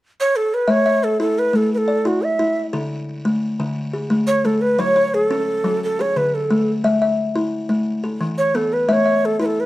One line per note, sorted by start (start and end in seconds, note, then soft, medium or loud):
0.20 0.38 C#5 medium
0.36 0.56 A4 medium
0.54 0.71 B4 medium
0.68 1.02 A3 medium
0.68 1.05 C#5 loud
0.68 0.85 E5 medium
0.86 1.37 E5 medium
1.04 1.20 A4 medium
1.20 1.54 E4 medium
1.20 1.40 A4 medium
1.39 1.57 B4 medium
1.53 1.88 A3 medium
1.53 1.72 A4 medium
1.74 2.08 A4 medium
1.74 1.79 B4 medium
1.88 2.40 D5 medium
2.05 2.38 E4 medium
2.05 2.26 F#4 medium
2.24 2.62 E5 medium
2.39 2.74 E4 medium
2.73 3.08 D3 medium
2.73 3.25 A4 medium
3.25 3.60 A3 medium
3.60 3.94 D3 medium
3.93 4.45 G#4 medium
4.10 4.43 A3 medium
4.27 4.47 C#5 loud
4.45 4.79 A3 medium
4.45 4.63 A4 medium
4.61 4.81 B4 medium
4.79 5.13 F#3 medium
4.79 4.95 C#5 medium
4.79 5.16 C#5 medium
4.96 5.48 C#5 medium
5.14 5.82 A4 medium
5.31 5.65 C#4 medium
5.64 5.82 F#3 medium
5.84 6.02 A4 medium
5.99 6.50 G#4 medium
5.99 6.18 C#5 medium
6.16 6.50 D3 medium
6.16 6.36 B4 medium
6.34 6.72 A4 medium
6.51 6.83 A3 medium
6.84 7.19 A3 medium
6.84 7.01 E5 medium
7.02 7.53 E5 medium
7.36 7.70 E4 medium
7.69 7.87 A3 medium
8.04 8.55 A4 medium
8.21 8.55 E3 medium
8.38 8.57 C#5 medium
8.55 8.89 B3 medium
8.55 8.75 A4 medium
8.73 8.94 B4 medium
8.89 9.23 A3 medium
8.89 9.27 C#5 medium
8.89 9.04 E5 medium
9.06 9.57 E5 medium
9.25 9.40 A4 medium
9.40 9.66 E4 medium
9.40 9.47 B4 medium
9.46 9.62 A4 medium
9.60 9.66 B4 medium